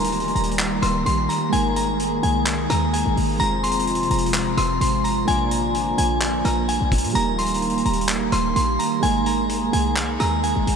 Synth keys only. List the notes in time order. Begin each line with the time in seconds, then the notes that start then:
Already playing: G3 A#3 D#4 A#4
1.50 G#3 A#3 D#4
1.54 A#4
3.37 G#3 C4 F4
3.42 C5
5.25 A#3 D4 F4
5.30 D5
7.12 G3 A#3 D#4
7.17 A#4
9.00 G#3 A#3 D#4
9.04 A#4